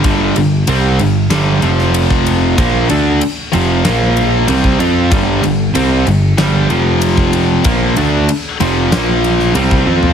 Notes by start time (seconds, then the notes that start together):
0.04 G1 G2 D3 G3, kick, ride
0.36 G1 G2 D3, ride
0.67 C2 C3 G3 C4, ride
0.99 G1 G2 D3, ride
1.30 G1 G2 D3 G3, snare, ride
1.61 F1 F2 C3 F3, ride
1.79 snare
1.94 ride
2.10 kick
2.26 ride
2.57 A#1 A#2 F3 A#3, kick, ride
2.89 D2 D3 A3 D4, ride
3.21 ride
3.52 F1 F2 C3 F3, ride
3.84 A#1 A#2 F3 A#3, snare, ride
4.17 ride
4.47 C2 C3 G3 C4, ride
4.64 kick
4.79 F2 F3 C4 F4, ride
5.11 G1 G2 D3 G3, kick, ride
5.43 G1 G2 D3, ride
5.74 C2 C3 G3 C4, ride
6.06 G1 G2 D3, ride
6.38 G1 G2 D3 G3, snare, ride
6.69 F1 F2 C3 F3, ride
7.02 ride
7.17 kick
7.33 ride
7.64 A#1 A#2 F3 A#3, kick, ride
7.96 D2 D3 A3 D4, ride
8.29 ride
8.60 F1 F2 C3 F3, ride
8.92 A#1 A#2 F3 A#3, snare, ride
9.24 ride
9.39 snare
9.55 C2 C3 G3 C4, ride
9.71 kick
9.86 F2 F3 C4 F4, high tom
10.03 floor tom